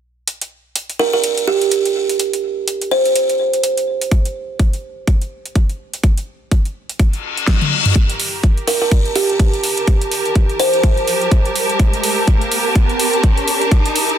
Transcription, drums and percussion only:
0.28 closed hi-hat
0.41 closed hi-hat
0.76 closed hi-hat
0.90 closed hi-hat
1.24 closed hi-hat
1.37 closed hi-hat
1.62 closed hi-hat
1.72 closed hi-hat
1.85 closed hi-hat
2.09 closed hi-hat
2.20 closed hi-hat
2.33 closed hi-hat
2.68 closed hi-hat
2.81 closed hi-hat
3.06 closed hi-hat
3.16 closed hi-hat
3.29 closed hi-hat
3.53 closed hi-hat
3.63 closed hi-hat
3.77 closed hi-hat
4.01 closed hi-hat
4.11 kick, closed hi-hat
4.25 closed hi-hat
4.59 kick, closed hi-hat
4.73 closed hi-hat
5.07 kick, closed hi-hat
5.22 closed hi-hat
5.46 closed hi-hat
5.55 kick, closed hi-hat
5.70 closed hi-hat
5.94 closed hi-hat
6.04 kick, closed hi-hat
6.17 closed hi-hat
6.51 kick, closed hi-hat
6.65 closed hi-hat
6.89 closed hi-hat
6.99 kick, closed hi-hat
7.13 closed hi-hat
7.37 closed hi-hat
7.47 kick, snare, closed hi-hat
7.61 closed hi-hat, high tom
7.85 closed hi-hat, mid tom
7.96 kick, closed hi-hat
8.10 closed hi-hat
8.20 open hi-hat
8.44 kick, closed hi-hat
8.58 closed hi-hat
8.68 open hi-hat
8.91 kick, closed hi-hat
9.05 closed hi-hat
9.16 open hi-hat
9.29 closed hi-hat
9.39 kick, closed hi-hat
9.54 closed hi-hat
9.64 open hi-hat
9.77 closed hi-hat
9.87 kick, closed hi-hat
10.01 closed hi-hat
10.12 open hi-hat
10.25 closed hi-hat
10.36 kick, closed hi-hat
10.50 closed hi-hat
10.60 open hi-hat
10.74 closed hi-hat
10.84 kick, closed hi-hat
10.97 closed hi-hat
11.08 open hi-hat
11.21 closed hi-hat
11.31 kick, closed hi-hat
11.46 closed hi-hat
11.56 open hi-hat
11.69 closed hi-hat
11.80 kick, closed hi-hat
11.93 closed hi-hat
12.04 open hi-hat
12.28 kick, closed hi-hat
12.41 closed hi-hat
12.52 open hi-hat
12.76 kick, closed hi-hat
12.89 closed hi-hat
13.00 open hi-hat
13.13 closed hi-hat
13.24 kick, closed hi-hat
13.37 closed hi-hat
13.48 open hi-hat
13.62 closed hi-hat
13.72 kick, closed hi-hat
13.86 closed hi-hat
13.96 open hi-hat
14.10 closed hi-hat

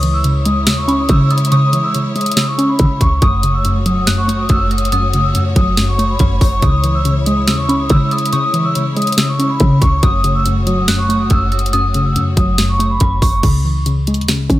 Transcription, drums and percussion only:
0.03 closed hi-hat
0.24 closed hi-hat
0.45 closed hi-hat
0.67 snare, closed hi-hat
0.89 closed hi-hat
1.09 kick, closed hi-hat
1.31 closed hi-hat
1.38 closed hi-hat
1.45 closed hi-hat
1.52 closed hi-hat
1.73 closed hi-hat
1.95 closed hi-hat
2.16 closed hi-hat
2.21 closed hi-hat
2.26 closed hi-hat
2.32 closed hi-hat
2.37 snare, closed hi-hat
2.59 closed hi-hat
2.79 kick, closed hi-hat
3.01 kick, closed hi-hat
3.22 kick, closed hi-hat
3.43 closed hi-hat
3.65 closed hi-hat
3.86 closed hi-hat
4.07 snare, closed hi-hat
4.29 closed hi-hat
4.49 kick, closed hi-hat
4.71 closed hi-hat
4.78 closed hi-hat
4.85 closed hi-hat
4.92 closed hi-hat
5.13 closed hi-hat
5.35 closed hi-hat
5.56 kick, closed hi-hat
5.77 snare, closed hi-hat
5.99 closed hi-hat
6.19 kick, closed hi-hat
6.41 kick, open hi-hat
6.62 kick, closed hi-hat
6.84 closed hi-hat
7.05 closed hi-hat
7.26 closed hi-hat
7.47 snare, closed hi-hat
7.69 closed hi-hat
7.90 kick, closed hi-hat
8.11 closed hi-hat
8.18 closed hi-hat
8.26 closed hi-hat
8.33 closed hi-hat
8.54 closed hi-hat
8.75 closed hi-hat
8.97 closed hi-hat
9.02 closed hi-hat
9.07 closed hi-hat
9.12 closed hi-hat
9.18 snare, closed hi-hat
9.40 closed hi-hat
9.60 kick, closed hi-hat
9.82 kick, closed hi-hat
10.03 kick, closed hi-hat
10.24 closed hi-hat
10.46 closed hi-hat
10.67 closed hi-hat
10.88 snare, closed hi-hat
11.10 closed hi-hat
11.30 kick, closed hi-hat
11.52 closed hi-hat
11.59 closed hi-hat
11.66 closed hi-hat
11.73 closed hi-hat
11.94 closed hi-hat
12.16 closed hi-hat
12.37 kick, closed hi-hat
12.58 snare, closed hi-hat
12.80 closed hi-hat
13.00 kick, closed hi-hat
13.22 kick, open hi-hat
13.43 kick, closed hi-hat, crash
13.86 closed hi-hat
14.07 closed hi-hat
14.14 closed hi-hat
14.21 closed hi-hat
14.28 snare, closed hi-hat
14.50 kick, closed hi-hat

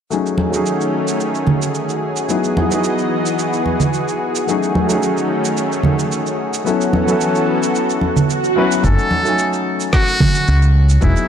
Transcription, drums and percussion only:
0.11 cabasa
0.26 cabasa
0.38 high conga
0.53 cabasa
0.66 cabasa
0.81 cabasa
1.07 cabasa
1.20 cabasa
1.35 cabasa
1.47 high conga, low conga
1.62 cabasa
1.75 cabasa
1.89 cabasa
2.16 cabasa
2.29 cabasa
2.44 cabasa
2.57 high conga
2.71 cabasa
2.84 cabasa
2.98 cabasa
3.26 cabasa
3.39 cabasa
3.53 cabasa
3.66 high conga
3.80 low conga, cabasa
3.93 cabasa
4.08 cabasa
4.35 cabasa
4.48 cabasa
4.63 cabasa
4.75 high conga
4.90 cabasa
5.02 cabasa
5.17 cabasa
5.45 cabasa
5.57 cabasa
5.72 cabasa
5.83 high conga, low conga
5.99 cabasa
6.12 cabasa
6.26 cabasa
6.54 cabasa
6.66 cabasa
6.81 cabasa
6.93 high conga
7.08 cabasa
7.21 cabasa
7.35 cabasa
7.63 cabasa
7.75 cabasa
7.90 cabasa
8.01 high conga
8.16 low conga, cabasa
8.30 cabasa
8.44 cabasa
8.71 cabasa
8.84 kick, cabasa
8.99 cabasa
9.11 high conga
9.25 cabasa
9.39 cabasa
9.53 cabasa
9.80 cabasa
9.93 kick, cross-stick, cabasa
10.08 cabasa
10.20 kick, high conga, low conga
10.34 cabasa
10.47 cabasa
10.62 cabasa
10.89 cabasa
11.02 kick, cabasa
11.16 cabasa

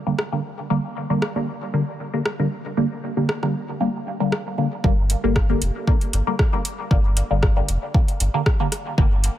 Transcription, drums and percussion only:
0.19 cross-stick
1.22 cross-stick
2.26 cross-stick
3.29 cross-stick
3.43 cross-stick
4.32 cross-stick
4.84 kick
5.10 closed hi-hat
5.36 kick, cross-stick
5.62 closed hi-hat
5.87 kick
6.01 closed hi-hat
6.13 closed hi-hat
6.39 kick, cross-stick
6.65 closed hi-hat
6.91 kick
7.17 closed hi-hat
7.43 kick, cross-stick
7.69 closed hi-hat
7.94 kick
8.08 closed hi-hat
8.20 closed hi-hat
8.46 kick, cross-stick
8.72 cross-stick, closed hi-hat
8.98 kick
9.24 closed hi-hat

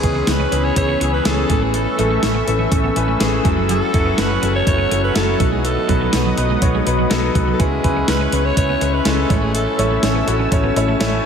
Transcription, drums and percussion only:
0.03 kick, closed hi-hat
0.27 snare, closed hi-hat, tambourine
0.52 closed hi-hat
0.76 kick, closed hi-hat
1.01 closed hi-hat
1.25 snare, closed hi-hat, tambourine
1.50 kick, closed hi-hat
1.74 closed hi-hat
1.99 closed hi-hat
2.23 snare, closed hi-hat, tambourine
2.48 closed hi-hat
2.72 kick, closed hi-hat
2.96 closed hi-hat
3.20 snare, closed hi-hat, tambourine
3.45 kick, closed hi-hat
3.69 closed hi-hat
3.94 kick, closed hi-hat
4.18 snare, closed hi-hat, tambourine
4.43 closed hi-hat
4.67 kick, closed hi-hat
4.91 closed hi-hat
5.15 snare, closed hi-hat, tambourine
5.40 kick, closed hi-hat
5.65 closed hi-hat
5.89 kick, closed hi-hat
6.13 snare, closed hi-hat, tambourine
6.38 closed hi-hat
6.62 kick, closed hi-hat
6.87 closed hi-hat
7.11 snare, closed hi-hat, tambourine
7.35 kick, closed hi-hat
7.60 kick, closed hi-hat
7.84 kick, closed hi-hat
8.08 snare, closed hi-hat, tambourine
8.32 closed hi-hat
8.57 kick, closed hi-hat
8.81 closed hi-hat
9.05 snare, closed hi-hat, tambourine
9.30 kick, closed hi-hat
9.55 closed hi-hat
9.79 closed hi-hat
10.03 snare, closed hi-hat, tambourine
10.28 closed hi-hat
10.52 kick, closed hi-hat
10.76 closed hi-hat
11.00 snare, closed hi-hat, tambourine

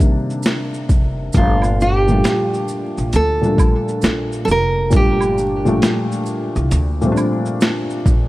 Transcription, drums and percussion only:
0.00 kick, maracas, shaker
0.30 shaker
0.43 snare, closed hi-hat, maracas, shaker
0.74 shaker
0.89 kick, maracas, shaker
1.33 kick, closed hi-hat, maracas, shaker
1.62 high woodblock, shaker
1.80 shaker, maracas
2.08 shaker
2.24 snare, closed hi-hat, shaker, maracas
2.54 shaker
2.68 maracas, shaker
2.98 shaker
3.13 closed hi-hat, shaker, maracas
3.43 shaker
3.58 kick, high woodblock, shaker, maracas
3.88 shaker
4.02 snare, closed hi-hat, maracas, shaker
4.32 shaker
4.48 maracas, shaker
4.91 kick, closed hi-hat, maracas, shaker
5.21 high woodblock, shaker
5.38 maracas, shaker
5.66 shaker
5.82 snare, closed hi-hat, shaker, maracas
6.12 shaker
6.26 maracas, shaker
6.56 shaker
6.71 closed hi-hat, maracas, shaker
7.02 shaker
7.17 high woodblock, shaker, maracas
7.46 shaker
7.61 snare, closed hi-hat, maracas, shaker
7.90 shaker
8.06 kick, maracas, shaker

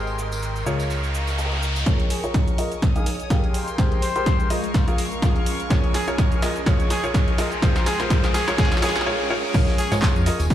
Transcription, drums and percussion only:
0.07 closed hi-hat, tambourine
0.18 snare, closed hi-hat, shaker
0.32 tambourine, shaker
0.42 closed hi-hat, tambourine, shaker
0.55 closed hi-hat, tambourine, shaker
0.67 closed hi-hat, shaker
0.79 tambourine, shaker
0.90 closed hi-hat, tambourine, shaker
1.03 tambourine, shaker
1.14 closed hi-hat, shaker
1.27 snare, tambourine, shaker
1.38 snare, closed hi-hat, tambourine, shaker
1.45 snare, closed hi-hat
1.51 snare, closed hi-hat, tambourine
1.56 snare, closed hi-hat
1.62 snare, closed hi-hat, shaker
1.76 snare, tambourine, shaker
1.86 kick, snare, closed hi-hat, shaker
2.00 closed hi-hat
2.10 open hi-hat, shaker
2.24 closed hi-hat, shaker
2.34 kick, snare, closed hi-hat, shaker
2.48 closed hi-hat, shaker
2.58 open hi-hat, shaker
2.72 closed hi-hat, shaker
2.82 kick, snare, closed hi-hat, shaker
2.96 closed hi-hat, shaker
3.06 open hi-hat, shaker
3.20 closed hi-hat, shaker
3.30 kick, snare, closed hi-hat, shaker
3.44 closed hi-hat
3.54 open hi-hat, shaker
3.68 closed hi-hat, shaker
3.78 kick, snare, closed hi-hat, shaker
3.92 closed hi-hat
4.02 open hi-hat, shaker
4.16 closed hi-hat, shaker
4.26 kick, snare, closed hi-hat, shaker
4.40 closed hi-hat, shaker
4.50 open hi-hat, shaker
4.64 closed hi-hat, shaker
4.74 kick, snare, closed hi-hat, shaker
4.88 closed hi-hat, shaker
4.98 open hi-hat, shaker
5.12 closed hi-hat, shaker
5.22 kick, snare, closed hi-hat, shaker
5.36 closed hi-hat
5.46 open hi-hat, shaker
5.60 closed hi-hat, shaker
5.70 kick, snare, closed hi-hat, shaker
5.84 closed hi-hat
5.94 snare, open hi-hat, shaker
6.08 closed hi-hat, shaker
6.18 kick, snare, closed hi-hat, shaker
6.32 closed hi-hat, shaker
6.42 snare, open hi-hat, shaker
6.56 closed hi-hat, shaker
6.66 kick, snare, closed hi-hat, shaker
6.80 closed hi-hat, shaker
6.90 snare, open hi-hat, shaker
7.04 closed hi-hat, shaker
7.14 kick, snare, closed hi-hat, shaker
7.28 closed hi-hat
7.38 snare, open hi-hat, shaker
7.52 closed hi-hat, shaker
7.62 kick, snare, closed hi-hat, shaker
7.76 snare, closed hi-hat, shaker
7.86 snare, open hi-hat, shaker
8.00 snare, closed hi-hat, shaker
8.10 kick, snare, closed hi-hat, shaker
8.24 snare, closed hi-hat, shaker
8.34 snare, open hi-hat, shaker
8.48 snare, closed hi-hat, shaker
8.58 kick, snare, closed hi-hat, shaker
8.65 snare
8.72 snare, closed hi-hat, shaker
8.77 snare
8.82 snare, open hi-hat, shaker
8.89 snare
8.96 snare, closed hi-hat, shaker
9.01 snare
9.54 kick, closed hi-hat, crash, tambourine, shaker
9.68 snare, closed hi-hat, tambourine
9.78 closed hi-hat, open hi-hat, shaker
9.92 snare, closed hi-hat, tambourine, shaker
10.01 kick, snare, clap, closed hi-hat, tambourine, shaker
10.16 tambourine, shaker
10.26 closed hi-hat, open hi-hat, shaker
10.40 closed hi-hat, tambourine, shaker
10.50 kick, closed hi-hat, tambourine, shaker

